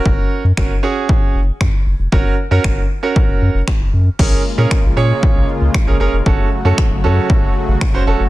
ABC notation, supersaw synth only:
X:1
M:4/4
L:1/8
Q:1/4=116
K:Bbm
V:1 name="Supersaw synth" clef=bass
z8 | z8 | [D,A,B,F]8 | [D,G,=A,G]8 |]